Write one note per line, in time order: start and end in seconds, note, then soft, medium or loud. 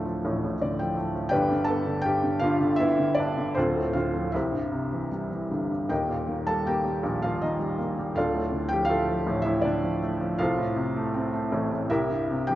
0.00 1.27 D1 medium
0.00 1.27 D2 medium
0.00 0.23 A2 soft
0.00 0.60 D3 soft
0.00 0.05 F3 soft
0.00 0.95 A3 medium
0.00 0.55 D4 soft
0.00 0.55 F4 soft
0.00 0.55 A4 soft
0.00 0.53 D5 medium
0.05 0.78 F3 soft
0.25 1.28 A1 medium
0.25 0.43 A2 medium
0.44 1.30 A2 soft
0.62 1.31 D3 soft
0.62 0.77 D5 medium
0.79 1.14 F3 soft
0.79 1.28 G5 medium
0.97 1.31 A3 medium
1.15 1.32 F3 soft
1.29 2.40 G1 medium
1.29 2.04 G2 medium
1.29 1.65 G4 medium
1.29 1.65 B4 medium
1.29 1.65 D5 medium
1.29 1.64 G5 medium
1.51 1.85 D3 soft
1.64 2.02 A4 medium
1.64 2.04 A5 medium
1.68 2.78 B3 medium
1.86 2.22 D3 medium
2.02 2.41 G2 medium
2.02 2.40 G4 medium
2.02 2.42 G5 medium
2.24 2.59 D3 medium
2.40 3.52 G1 medium
2.40 3.16 G2 medium
2.40 2.80 F5 medium
2.44 2.78 F4 medium
2.61 2.97 D3 medium
2.76 3.54 B3 medium
2.76 3.17 E5 loud
2.80 3.16 E4 medium
2.98 3.36 D3 medium
3.15 3.55 G2 medium
3.15 3.56 D5 medium
3.20 3.55 D4 medium
3.37 3.56 D3 medium
3.55 4.30 D1 medium
3.55 4.32 D2 medium
3.55 3.94 A4 medium
3.55 3.96 C5 medium
3.59 3.94 C4 medium
3.59 3.94 F4 medium
3.77 4.33 A2 medium
3.93 4.32 D3 medium
3.93 4.32 F4 medium
3.93 4.34 F5 medium
4.14 4.33 F3 medium
4.32 5.87 C2 medium
4.32 5.09 E4 soft
4.32 5.09 G4 soft
4.32 5.09 C5 soft
4.32 5.07 E5 medium
4.52 5.50 G2 soft
4.72 5.87 C3 soft
4.93 5.30 E3 soft
5.12 5.88 G3 soft
5.31 5.88 E3 soft
5.51 5.87 G1 soft
5.51 5.69 G2 soft
5.70 5.90 G2 soft
5.89 8.12 D#1 soft
5.89 8.12 D#2 medium
5.89 6.44 G4 medium
5.89 6.43 A#4 soft
5.89 6.44 D#5 medium
5.89 6.49 G5 medium
6.08 7.02 A#2 soft
6.28 7.41 D#3 soft
6.47 6.83 G3 soft
6.47 6.65 A4 medium
6.47 6.67 A5 medium
6.66 7.77 A#3 soft
6.66 7.20 G4 medium
6.66 7.20 A#4 medium
6.66 7.25 G5 medium
6.85 7.58 G3 soft
7.03 8.12 A#1 medium
7.03 7.20 A#2 medium
7.22 8.13 A#2 soft
7.22 7.41 F4 medium
7.22 7.40 F5 medium
7.42 8.14 D#3 soft
7.42 7.78 D#4 soft
7.42 7.76 D#5 medium
7.59 7.96 G3 soft
7.78 8.15 A#3 soft
7.98 8.16 G3 soft
8.15 10.35 D1 medium
8.15 10.35 D2 medium
8.15 8.69 F4 medium
8.15 8.69 A4 medium
8.15 8.69 D5 medium
8.15 8.68 F5 medium
8.34 9.25 A2 medium
8.52 9.64 D3 soft
8.69 9.07 F3 medium
8.69 8.90 G5 medium
8.73 8.90 G4 medium
8.85 9.45 F5 medium
8.89 10.02 A3 medium
8.89 9.42 F4 medium
8.89 9.42 A4 medium
9.08 9.81 F3 medium
9.26 10.35 A1 medium
9.26 9.43 A2 medium
9.42 10.36 A2 soft
9.42 9.63 E5 medium
9.46 9.64 E4 medium
9.61 10.37 D3 medium
9.61 10.00 D4 medium
9.61 9.98 D5 medium
9.83 10.19 F3 medium
10.03 10.39 A3 medium
10.21 10.39 F3 medium
10.39 11.87 C2 medium
10.39 11.88 F4 medium
10.39 11.87 A4 medium
10.39 11.88 C5 medium
10.39 11.86 F5 medium
10.57 11.50 A2 medium
10.76 11.87 C3 medium
10.96 11.32 A3 medium
11.14 11.88 C4 medium
11.33 11.89 A3 medium
11.52 11.88 A1 medium
11.52 11.70 A2 medium
11.71 11.90 A2 soft
11.90 12.55 C2 medium
11.90 12.44 E4 medium
11.90 12.44 G4 medium
11.90 12.44 A#4 medium
11.90 12.49 E5 medium
12.10 12.55 G2 soft
12.30 12.55 C3 soft
12.47 12.55 E3 medium
12.47 12.55 G4 medium
12.47 12.55 G5 medium